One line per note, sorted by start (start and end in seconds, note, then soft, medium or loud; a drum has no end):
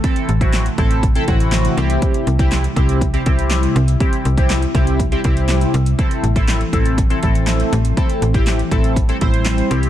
0.00 5.95 C3 medium
0.00 1.74 E3 medium
0.00 1.74 A3 medium
0.00 0.28 C4 medium
0.00 0.28 E4 medium
0.00 kick loud
0.00 closed hi-hat medium
0.04 0.29 A4 medium
0.16 closed hi-hat medium
0.29 0.69 A1 medium
0.29 closed hi-hat medium
0.41 0.65 C4 medium
0.41 0.66 E4 medium
0.41 0.66 F#4 loud
0.41 kick medium
0.41 closed hi-hat medium
0.53 snare medium
0.53 clap loud
0.53 closed hi-hat medium
0.66 closed hi-hat soft
0.78 1.19 A1 medium
0.78 1.03 C4 medium
0.78 1.03 E4 medium
0.78 1.03 A4 loud
0.78 kick loud
0.78 closed hi-hat medium
0.91 closed hi-hat medium
1.03 kick loud
1.03 closed hi-hat medium
1.15 1.24 C4 medium
1.15 1.24 E4 medium
1.15 1.24 A4 loud
1.15 closed hi-hat medium
1.28 1.69 A1 medium
1.28 1.76 C4 medium
1.28 1.76 E4 medium
1.28 1.77 F#4 medium
1.28 kick medium
1.28 closed hi-hat medium
1.40 closed hi-hat medium
1.52 snare loud
1.52 clap loud
1.52 closed hi-hat medium
1.65 closed hi-hat medium
1.77 1.98 C2 loud
1.77 5.95 G3 medium
1.77 2.27 C4 medium
1.77 2.27 E4 medium
1.77 5.95 E4 medium
1.77 2.27 G4 loud
1.77 closed hi-hat medium
1.90 closed hi-hat medium
2.02 kick loud
2.02 closed hi-hat medium
2.14 closed hi-hat medium
2.27 2.67 C2 medium
2.27 closed hi-hat medium
2.39 2.64 C4 medium
2.39 2.64 E4 medium
2.39 2.64 G4 loud
2.39 kick medium
2.39 closed hi-hat medium
2.52 snare medium
2.52 clap loud
2.52 closed hi-hat medium
2.64 closed hi-hat soft
2.76 3.17 C2 medium
2.76 3.01 C4 medium
2.76 3.01 E4 medium
2.76 3.01 G4 medium
2.76 kick loud
2.76 closed hi-hat medium
2.89 closed hi-hat medium
3.01 kick medium
3.01 closed hi-hat loud
3.13 3.22 C4 medium
3.13 3.22 E4 medium
3.13 3.22 G4 loud
3.13 closed hi-hat medium
3.26 3.67 C2 medium
3.26 3.75 C4 medium
3.26 3.75 E4 medium
3.26 3.75 G4 medium
3.26 kick loud
3.26 closed hi-hat medium
3.39 closed hi-hat medium
3.50 snare loud
3.50 clap loud
3.50 closed hi-hat medium
3.63 closed hi-hat medium
3.76 3.96 C2 loud
3.76 closed hi-hat medium
3.88 closed hi-hat medium
4.00 4.25 C4 medium
4.00 4.25 E4 medium
4.00 4.25 G4 medium
4.00 kick loud
4.00 closed hi-hat medium
4.13 closed hi-hat medium
4.25 4.66 C2 medium
4.25 closed hi-hat medium
4.37 4.62 C4 medium
4.37 4.62 E4 medium
4.37 4.62 G4 medium
4.37 kick medium
4.37 closed hi-hat medium
4.50 snare medium
4.50 clap loud
4.50 closed hi-hat medium
4.62 closed hi-hat soft
4.75 5.15 C2 medium
4.75 4.99 C4 medium
4.75 4.99 E4 medium
4.75 5.00 G4 loud
4.75 kick loud
4.75 closed hi-hat medium
4.87 closed hi-hat medium
5.00 kick loud
5.00 closed hi-hat medium
5.12 5.20 C4 medium
5.12 5.20 E4 medium
5.12 5.20 G4 loud
5.12 closed hi-hat medium
5.24 5.65 C2 medium
5.24 5.73 C4 medium
5.24 5.74 E4 medium
5.24 5.74 G4 medium
5.24 kick medium
5.24 closed hi-hat medium
5.37 closed hi-hat medium
5.49 snare loud
5.49 clap loud
5.49 closed hi-hat medium
5.61 closed hi-hat medium
5.74 5.94 C2 loud
5.74 closed hi-hat medium
5.86 closed hi-hat medium
5.98 9.67 E3 medium
5.98 7.95 A3 medium
5.98 6.23 C4 medium
5.98 9.67 C4 medium
5.98 6.23 E4 medium
5.98 6.23 A4 medium
5.98 kick loud
5.98 closed hi-hat medium
6.11 closed hi-hat medium
6.23 6.64 A1 medium
6.23 closed hi-hat medium
6.36 6.61 C4 medium
6.36 6.61 E4 medium
6.36 6.61 A4 loud
6.36 kick medium
6.36 closed hi-hat medium
6.48 snare medium
6.48 clap loud
6.48 closed hi-hat medium
6.61 closed hi-hat soft
6.73 7.14 A1 medium
6.73 6.98 C4 medium
6.73 6.98 E4 medium
6.73 6.98 A4 loud
6.73 kick loud
6.73 closed hi-hat medium
6.85 closed hi-hat medium
6.98 kick medium
6.98 closed hi-hat medium
7.10 7.18 C4 medium
7.10 7.19 E4 medium
7.10 7.19 A4 loud
7.10 closed hi-hat medium
7.22 7.64 A1 medium
7.22 7.72 C4 medium
7.22 7.72 E4 medium
7.22 7.72 A4 medium
7.22 kick medium
7.22 closed hi-hat medium
7.35 closed hi-hat medium
7.47 snare loud
7.47 clap loud
7.47 closed hi-hat medium
7.60 closed hi-hat medium
7.73 7.93 A1 loud
7.73 closed hi-hat medium
7.85 closed hi-hat medium
7.97 9.89 G3 medium
7.97 8.22 C4 medium
7.97 8.22 E4 medium
7.97 8.22 A4 medium
7.97 kick loud
7.97 closed hi-hat medium
8.10 closed hi-hat medium
8.22 8.63 A1 medium
8.22 closed hi-hat medium
8.34 8.59 C4 medium
8.34 8.59 E4 medium
8.34 8.59 G4 loud
8.34 kick medium
8.34 closed hi-hat medium
8.47 snare medium
8.47 clap loud
8.47 closed hi-hat medium
8.59 closed hi-hat soft
8.71 9.12 A1 medium
8.71 8.96 C4 medium
8.71 8.96 E4 medium
8.71 8.96 A4 loud
8.71 kick loud
8.71 closed hi-hat medium
8.84 closed hi-hat medium
8.96 kick loud
8.96 closed hi-hat loud
9.09 9.17 C4 medium
9.09 9.17 E4 medium
9.09 9.17 A4 loud
9.09 closed hi-hat medium
9.21 9.62 A1 medium
9.21 9.69 C4 medium
9.21 9.69 E4 medium
9.21 9.71 C5 medium
9.21 kick medium
9.21 closed hi-hat medium
9.34 closed hi-hat medium
9.45 snare medium
9.45 clap loud
9.45 closed hi-hat medium
9.58 closed hi-hat medium
9.70 9.89 C2 loud
9.70 9.89 C4 medium
9.70 9.89 E4 medium
9.70 9.89 G4 loud
9.70 closed hi-hat medium
9.83 closed hi-hat medium